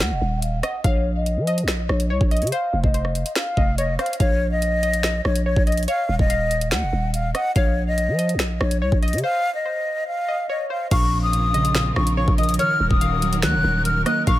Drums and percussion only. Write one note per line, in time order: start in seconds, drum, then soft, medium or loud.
0.00 snare loud
0.00 closed hi-hat medium
0.42 closed hi-hat medium
0.63 cross-stick medium
0.63 closed hi-hat medium
0.84 kick loud
0.84 closed hi-hat medium
1.26 closed hi-hat medium
1.47 closed hi-hat medium
1.58 closed hi-hat medium
1.68 finger snap medium
1.68 snare loud
1.89 cross-stick medium
2.00 closed hi-hat medium
2.21 kick loud
2.31 closed hi-hat soft
2.37 closed hi-hat medium
2.42 closed hi-hat medium
2.47 closed hi-hat medium
2.52 closed hi-hat medium
2.84 kick loud
2.94 closed hi-hat medium
3.05 cross-stick medium
3.15 closed hi-hat medium
3.26 closed hi-hat medium
3.35 finger snap medium
3.35 snare loud
3.35 closed hi-hat medium
3.57 kick loud
3.78 closed hi-hat medium
3.99 cross-stick medium
3.99 closed hi-hat soft
4.06 closed hi-hat medium
4.13 closed hi-hat medium
4.20 kick loud
4.20 closed hi-hat medium
4.62 closed hi-hat medium
4.83 closed hi-hat medium
4.93 closed hi-hat medium
5.03 finger snap medium
5.03 snare loud
5.25 cross-stick medium
5.35 closed hi-hat medium
5.56 kick loud
5.67 closed hi-hat soft
5.72 closed hi-hat medium
5.77 closed hi-hat medium
5.83 closed hi-hat medium
5.88 closed hi-hat medium
6.19 kick loud
6.30 closed hi-hat medium
6.51 closed hi-hat medium
6.61 closed hi-hat medium
6.71 finger snap medium
6.71 snare loud
6.71 closed hi-hat medium
7.14 closed hi-hat medium
7.35 cross-stick medium
7.35 closed hi-hat medium
7.56 kick loud
7.56 closed hi-hat medium
7.98 closed hi-hat medium
8.19 closed hi-hat medium
8.29 closed hi-hat medium
8.39 finger snap medium
8.39 snare loud
8.61 cross-stick loud
8.71 closed hi-hat medium
8.92 kick loud
9.03 closed hi-hat soft
9.08 closed hi-hat medium
9.13 closed hi-hat medium
9.18 closed hi-hat medium
10.91 kick loud
10.91 closed hi-hat medium
10.91 crash loud
11.33 closed hi-hat medium
11.54 closed hi-hat medium
11.65 closed hi-hat medium
11.75 finger snap medium
11.75 snare loud
11.96 cross-stick loud
12.07 closed hi-hat medium
12.28 kick loud
12.38 closed hi-hat soft
12.43 closed hi-hat medium
12.49 closed hi-hat medium
12.54 closed hi-hat medium
12.59 closed hi-hat medium
12.91 kick loud
13.01 closed hi-hat medium
13.22 closed hi-hat medium
13.33 closed hi-hat medium
13.42 finger snap medium
13.42 snare loud
13.42 closed hi-hat medium
13.85 closed hi-hat medium
14.06 cross-stick medium
14.06 closed hi-hat medium
14.27 kick loud
14.27 closed hi-hat medium